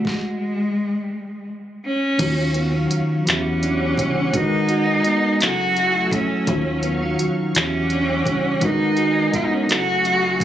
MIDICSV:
0, 0, Header, 1, 7, 480
1, 0, Start_track
1, 0, Tempo, 714286
1, 35, Time_signature, 6, 3, 24, 8
1, 7018, End_track
2, 0, Start_track
2, 0, Title_t, "Analog synth pad"
2, 0, Program_c, 0, 89
2, 1480, Note_on_c, 0, 54, 73
2, 1483, Note_on_c, 0, 77, 67
2, 1485, Note_on_c, 0, 85, 87
2, 2190, Note_off_c, 0, 54, 0
2, 2192, Note_off_c, 0, 77, 0
2, 2193, Note_off_c, 0, 85, 0
2, 2197, Note_on_c, 0, 78, 74
2, 2197, Note_on_c, 0, 86, 79
2, 2198, Note_on_c, 0, 55, 69
2, 2909, Note_off_c, 0, 55, 0
2, 2909, Note_off_c, 0, 86, 0
2, 2909, Note_on_c, 0, 82, 78
2, 2913, Note_on_c, 0, 80, 86
2, 3622, Note_off_c, 0, 78, 0
2, 3625, Note_off_c, 0, 82, 0
2, 3627, Note_off_c, 0, 80, 0
2, 3634, Note_on_c, 0, 57, 71
2, 3634, Note_on_c, 0, 88, 77
2, 3635, Note_on_c, 0, 80, 65
2, 4344, Note_on_c, 0, 54, 78
2, 4344, Note_on_c, 0, 77, 73
2, 4344, Note_on_c, 0, 85, 86
2, 4347, Note_off_c, 0, 57, 0
2, 4347, Note_off_c, 0, 88, 0
2, 4348, Note_off_c, 0, 80, 0
2, 5061, Note_on_c, 0, 78, 67
2, 5061, Note_on_c, 0, 86, 83
2, 5062, Note_off_c, 0, 54, 0
2, 5062, Note_off_c, 0, 77, 0
2, 5062, Note_off_c, 0, 85, 0
2, 5064, Note_on_c, 0, 55, 74
2, 5780, Note_off_c, 0, 86, 0
2, 5782, Note_off_c, 0, 55, 0
2, 5788, Note_on_c, 0, 80, 86
2, 5790, Note_on_c, 0, 82, 76
2, 6493, Note_off_c, 0, 78, 0
2, 6499, Note_off_c, 0, 80, 0
2, 6505, Note_off_c, 0, 82, 0
2, 6507, Note_on_c, 0, 80, 65
2, 6508, Note_on_c, 0, 57, 73
2, 6513, Note_on_c, 0, 88, 79
2, 7018, Note_off_c, 0, 57, 0
2, 7018, Note_off_c, 0, 80, 0
2, 7018, Note_off_c, 0, 88, 0
2, 7018, End_track
3, 0, Start_track
3, 0, Title_t, "Tine electric piano"
3, 0, Program_c, 1, 4
3, 0, Control_c, 1, 64, 127
3, 45, Control_c, 1, 64, 0
3, 1464, Note_on_c, 1, 51, 73
3, 1471, Note_on_c, 1, 58, 73
3, 1480, Note_on_c, 1, 65, 70
3, 1485, Note_on_c, 1, 66, 72
3, 1491, Note_on_c, 1, 73, 83
3, 1606, Control_c, 1, 64, 127
3, 2042, Note_off_c, 1, 51, 0
3, 2045, Note_off_c, 1, 58, 0
3, 2050, Note_off_c, 1, 65, 0
3, 2052, Note_off_c, 1, 66, 0
3, 2056, Note_off_c, 1, 73, 0
3, 2187, Note_on_c, 1, 52, 69
3, 2194, Note_on_c, 1, 59, 60
3, 2201, Note_on_c, 1, 66, 64
3, 2202, Control_c, 1, 64, 0
3, 2209, Note_on_c, 1, 67, 60
3, 2217, Note_on_c, 1, 76, 73
3, 2334, Control_c, 1, 64, 127
3, 2763, Note_off_c, 1, 52, 0
3, 2767, Note_off_c, 1, 59, 0
3, 2771, Note_off_c, 1, 66, 0
3, 2774, Note_off_c, 1, 67, 0
3, 2778, Note_off_c, 1, 76, 0
3, 2905, Note_on_c, 1, 56, 82
3, 2912, Note_on_c, 1, 63, 69
3, 2920, Note_on_c, 1, 66, 77
3, 2923, Control_c, 1, 64, 0
3, 2927, Note_on_c, 1, 70, 73
3, 2933, Note_on_c, 1, 71, 83
3, 3060, Control_c, 1, 64, 127
3, 3483, Note_off_c, 1, 56, 0
3, 3486, Note_off_c, 1, 63, 0
3, 3490, Note_off_c, 1, 66, 0
3, 3494, Note_off_c, 1, 70, 0
3, 3496, Note_off_c, 1, 71, 0
3, 3626, Note_on_c, 1, 54, 68
3, 3632, Note_on_c, 1, 61, 62
3, 3637, Note_on_c, 1, 64, 60
3, 3643, Control_c, 1, 64, 0
3, 3647, Note_on_c, 1, 68, 65
3, 3652, Note_on_c, 1, 69, 71
3, 3742, Control_c, 1, 64, 127
3, 4203, Note_off_c, 1, 54, 0
3, 4206, Note_off_c, 1, 61, 0
3, 4209, Note_off_c, 1, 64, 0
3, 4213, Note_off_c, 1, 68, 0
3, 4216, Note_off_c, 1, 69, 0
3, 4346, Note_on_c, 1, 51, 79
3, 4350, Note_on_c, 1, 63, 75
3, 4358, Note_on_c, 1, 65, 79
3, 4363, Control_c, 1, 64, 0
3, 4365, Note_on_c, 1, 66, 70
3, 4373, Note_on_c, 1, 73, 89
3, 4476, Control_c, 1, 64, 127
3, 4923, Note_off_c, 1, 51, 0
3, 4925, Note_off_c, 1, 63, 0
3, 4929, Note_off_c, 1, 65, 0
3, 4933, Note_off_c, 1, 66, 0
3, 4936, Note_off_c, 1, 73, 0
3, 5067, Note_on_c, 1, 52, 69
3, 5071, Note_on_c, 1, 64, 63
3, 5078, Note_on_c, 1, 66, 60
3, 5085, Control_c, 1, 64, 0
3, 5087, Note_on_c, 1, 67, 60
3, 5094, Note_on_c, 1, 76, 73
3, 5212, Control_c, 1, 64, 127
3, 5644, Note_off_c, 1, 52, 0
3, 5646, Note_off_c, 1, 64, 0
3, 5649, Note_off_c, 1, 66, 0
3, 5653, Note_off_c, 1, 67, 0
3, 5657, Note_off_c, 1, 76, 0
3, 5781, Note_on_c, 1, 56, 80
3, 5787, Note_on_c, 1, 63, 77
3, 5798, Note_on_c, 1, 66, 71
3, 5802, Note_on_c, 1, 70, 73
3, 5803, Control_c, 1, 64, 0
3, 5809, Note_on_c, 1, 71, 89
3, 5941, Control_c, 1, 64, 127
3, 6360, Note_off_c, 1, 56, 0
3, 6363, Note_off_c, 1, 63, 0
3, 6369, Note_off_c, 1, 66, 0
3, 6371, Note_off_c, 1, 70, 0
3, 6374, Note_off_c, 1, 71, 0
3, 6500, Note_on_c, 1, 54, 67
3, 6508, Note_on_c, 1, 61, 60
3, 6515, Note_on_c, 1, 64, 59
3, 6520, Note_on_c, 1, 68, 65
3, 6523, Control_c, 1, 64, 0
3, 6530, Note_on_c, 1, 69, 76
3, 6634, Control_c, 1, 64, 127
3, 7018, Note_off_c, 1, 54, 0
3, 7018, Note_off_c, 1, 61, 0
3, 7018, Note_off_c, 1, 64, 0
3, 7018, Note_off_c, 1, 68, 0
3, 7018, Note_off_c, 1, 69, 0
3, 7018, End_track
4, 0, Start_track
4, 0, Title_t, "Cello"
4, 0, Program_c, 2, 42
4, 45, Note_on_c, 2, 56, 77
4, 1000, Note_off_c, 2, 56, 0
4, 1247, Note_on_c, 2, 61, 91
4, 1934, Note_off_c, 2, 61, 0
4, 2221, Note_on_c, 2, 61, 83
4, 2931, Note_on_c, 2, 63, 99
4, 2941, Note_off_c, 2, 61, 0
4, 3649, Note_on_c, 2, 66, 105
4, 3659, Note_off_c, 2, 63, 0
4, 4124, Note_on_c, 2, 61, 86
4, 4134, Note_off_c, 2, 66, 0
4, 4839, Note_off_c, 2, 61, 0
4, 5100, Note_on_c, 2, 61, 93
4, 5813, Note_on_c, 2, 63, 101
4, 5824, Note_off_c, 2, 61, 0
4, 6281, Note_on_c, 2, 65, 78
4, 6291, Note_off_c, 2, 63, 0
4, 6342, Note_on_c, 2, 63, 80
4, 6352, Note_off_c, 2, 65, 0
4, 6409, Note_on_c, 2, 61, 78
4, 6420, Note_off_c, 2, 63, 0
4, 6474, Note_on_c, 2, 63, 73
4, 6484, Note_off_c, 2, 61, 0
4, 6541, Note_on_c, 2, 66, 103
4, 6551, Note_off_c, 2, 63, 0
4, 7008, Note_off_c, 2, 66, 0
4, 7018, End_track
5, 0, Start_track
5, 0, Title_t, "Clean electric guitar"
5, 0, Program_c, 3, 27
5, 0, Note_on_c, 3, 52, 69
5, 0, Note_on_c, 3, 55, 53
5, 0, Note_on_c, 3, 66, 59
5, 87, Note_off_c, 3, 55, 0
5, 90, Note_off_c, 3, 52, 0
5, 422, Note_off_c, 3, 66, 0
5, 1473, Note_on_c, 3, 51, 90
5, 1713, Note_on_c, 3, 59, 60
5, 1835, Note_off_c, 3, 59, 0
5, 1835, Note_on_c, 3, 61, 49
5, 1949, Note_on_c, 3, 54, 58
5, 2185, Note_off_c, 3, 51, 0
5, 2187, Note_on_c, 3, 52, 86
5, 2243, Note_off_c, 3, 61, 0
5, 2440, Note_on_c, 3, 62, 65
5, 2668, Note_off_c, 3, 54, 0
5, 2671, Note_on_c, 3, 55, 60
5, 2910, Note_off_c, 3, 55, 0
5, 2913, Note_on_c, 3, 56, 85
5, 2959, Note_off_c, 3, 52, 0
5, 2965, Note_off_c, 3, 62, 0
5, 3155, Note_on_c, 3, 66, 60
5, 3396, Note_on_c, 3, 59, 61
5, 3634, Note_off_c, 3, 56, 0
5, 3646, Note_on_c, 3, 54, 84
5, 3683, Note_off_c, 3, 59, 0
5, 3885, Note_off_c, 3, 66, 0
5, 3888, Note_on_c, 3, 64, 65
5, 4116, Note_on_c, 3, 57, 59
5, 4366, Note_on_c, 3, 51, 84
5, 4403, Note_off_c, 3, 57, 0
5, 4409, Note_off_c, 3, 64, 0
5, 4593, Note_on_c, 3, 59, 61
5, 4719, Note_off_c, 3, 59, 0
5, 4719, Note_on_c, 3, 61, 46
5, 4832, Note_off_c, 3, 54, 0
5, 4835, Note_on_c, 3, 54, 60
5, 5076, Note_off_c, 3, 51, 0
5, 5078, Note_on_c, 3, 52, 80
5, 5125, Note_off_c, 3, 61, 0
5, 5326, Note_on_c, 3, 62, 62
5, 5556, Note_off_c, 3, 54, 0
5, 5558, Note_on_c, 3, 55, 63
5, 5792, Note_off_c, 3, 55, 0
5, 5795, Note_on_c, 3, 56, 83
5, 5845, Note_off_c, 3, 52, 0
5, 5848, Note_off_c, 3, 62, 0
5, 6029, Note_on_c, 3, 66, 59
5, 6276, Note_on_c, 3, 59, 57
5, 6513, Note_off_c, 3, 56, 0
5, 6516, Note_on_c, 3, 54, 82
5, 6564, Note_off_c, 3, 59, 0
5, 6757, Note_off_c, 3, 66, 0
5, 6759, Note_on_c, 3, 64, 65
5, 6992, Note_on_c, 3, 57, 62
5, 7018, Note_off_c, 3, 54, 0
5, 7018, Note_off_c, 3, 57, 0
5, 7018, Note_off_c, 3, 64, 0
5, 7018, End_track
6, 0, Start_track
6, 0, Title_t, "Analog synth bass"
6, 0, Program_c, 4, 38
6, 1478, Note_on_c, 4, 39, 108
6, 1930, Note_off_c, 4, 39, 0
6, 1969, Note_on_c, 4, 40, 45
6, 2013, Note_off_c, 4, 40, 0
6, 2209, Note_on_c, 4, 40, 97
6, 2655, Note_off_c, 4, 40, 0
6, 2678, Note_on_c, 4, 30, 92
6, 2918, Note_on_c, 4, 32, 119
6, 2928, Note_off_c, 4, 30, 0
6, 3369, Note_off_c, 4, 32, 0
6, 3406, Note_on_c, 4, 30, 44
6, 3451, Note_off_c, 4, 30, 0
6, 3649, Note_on_c, 4, 30, 86
6, 4095, Note_off_c, 4, 30, 0
6, 4356, Note_on_c, 4, 39, 104
6, 4808, Note_off_c, 4, 39, 0
6, 4846, Note_on_c, 4, 40, 50
6, 4891, Note_off_c, 4, 40, 0
6, 5080, Note_on_c, 4, 40, 96
6, 5531, Note_off_c, 4, 40, 0
6, 5552, Note_on_c, 4, 30, 88
6, 5769, Note_off_c, 4, 30, 0
6, 5797, Note_on_c, 4, 32, 106
6, 6249, Note_off_c, 4, 32, 0
6, 6278, Note_on_c, 4, 30, 47
6, 6325, Note_off_c, 4, 30, 0
6, 6524, Note_on_c, 4, 30, 86
6, 6972, Note_off_c, 4, 30, 0
6, 7018, End_track
7, 0, Start_track
7, 0, Title_t, "Drums"
7, 33, Note_on_c, 9, 36, 84
7, 48, Note_on_c, 9, 38, 73
7, 100, Note_off_c, 9, 36, 0
7, 115, Note_off_c, 9, 38, 0
7, 1472, Note_on_c, 9, 49, 93
7, 1474, Note_on_c, 9, 36, 113
7, 1474, Note_on_c, 9, 42, 80
7, 1539, Note_off_c, 9, 49, 0
7, 1541, Note_off_c, 9, 36, 0
7, 1541, Note_off_c, 9, 42, 0
7, 1709, Note_on_c, 9, 42, 54
7, 1776, Note_off_c, 9, 42, 0
7, 1954, Note_on_c, 9, 42, 77
7, 2021, Note_off_c, 9, 42, 0
7, 2198, Note_on_c, 9, 42, 75
7, 2212, Note_on_c, 9, 39, 112
7, 2265, Note_off_c, 9, 42, 0
7, 2279, Note_off_c, 9, 39, 0
7, 2438, Note_on_c, 9, 42, 54
7, 2505, Note_off_c, 9, 42, 0
7, 2672, Note_on_c, 9, 36, 80
7, 2681, Note_on_c, 9, 42, 81
7, 2739, Note_off_c, 9, 36, 0
7, 2748, Note_off_c, 9, 42, 0
7, 2913, Note_on_c, 9, 36, 120
7, 2915, Note_on_c, 9, 42, 77
7, 2981, Note_off_c, 9, 36, 0
7, 2982, Note_off_c, 9, 42, 0
7, 3149, Note_on_c, 9, 42, 58
7, 3216, Note_off_c, 9, 42, 0
7, 3390, Note_on_c, 9, 42, 72
7, 3457, Note_off_c, 9, 42, 0
7, 3632, Note_on_c, 9, 42, 79
7, 3646, Note_on_c, 9, 39, 117
7, 3699, Note_off_c, 9, 42, 0
7, 3713, Note_off_c, 9, 39, 0
7, 3874, Note_on_c, 9, 42, 57
7, 3941, Note_off_c, 9, 42, 0
7, 4109, Note_on_c, 9, 36, 80
7, 4116, Note_on_c, 9, 42, 80
7, 4176, Note_off_c, 9, 36, 0
7, 4184, Note_off_c, 9, 42, 0
7, 4349, Note_on_c, 9, 42, 74
7, 4351, Note_on_c, 9, 36, 114
7, 4417, Note_off_c, 9, 42, 0
7, 4418, Note_off_c, 9, 36, 0
7, 4588, Note_on_c, 9, 42, 56
7, 4655, Note_off_c, 9, 42, 0
7, 4833, Note_on_c, 9, 42, 75
7, 4900, Note_off_c, 9, 42, 0
7, 5073, Note_on_c, 9, 42, 78
7, 5087, Note_on_c, 9, 39, 110
7, 5140, Note_off_c, 9, 42, 0
7, 5154, Note_off_c, 9, 39, 0
7, 5309, Note_on_c, 9, 42, 56
7, 5376, Note_off_c, 9, 42, 0
7, 5548, Note_on_c, 9, 36, 81
7, 5554, Note_on_c, 9, 42, 74
7, 5615, Note_off_c, 9, 36, 0
7, 5621, Note_off_c, 9, 42, 0
7, 5788, Note_on_c, 9, 42, 82
7, 5791, Note_on_c, 9, 36, 118
7, 5856, Note_off_c, 9, 42, 0
7, 5858, Note_off_c, 9, 36, 0
7, 6026, Note_on_c, 9, 42, 55
7, 6093, Note_off_c, 9, 42, 0
7, 6273, Note_on_c, 9, 36, 88
7, 6273, Note_on_c, 9, 42, 73
7, 6340, Note_off_c, 9, 36, 0
7, 6341, Note_off_c, 9, 42, 0
7, 6513, Note_on_c, 9, 42, 77
7, 6527, Note_on_c, 9, 39, 113
7, 6581, Note_off_c, 9, 42, 0
7, 6595, Note_off_c, 9, 39, 0
7, 6754, Note_on_c, 9, 42, 55
7, 6821, Note_off_c, 9, 42, 0
7, 6990, Note_on_c, 9, 36, 83
7, 6997, Note_on_c, 9, 42, 78
7, 7018, Note_off_c, 9, 36, 0
7, 7018, Note_off_c, 9, 42, 0
7, 7018, End_track
0, 0, End_of_file